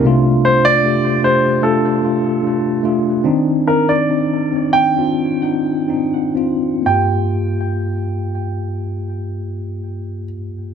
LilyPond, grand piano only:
\new Staff \with { instrumentName = "Grand piano" } { \time 4/4 \key g \minor \tempo 4 = 67 r8 c''16 d''8. c''8 a'4. r8 | r8 bes'16 d''4 g''4.~ g''16 r8 | g''1 | }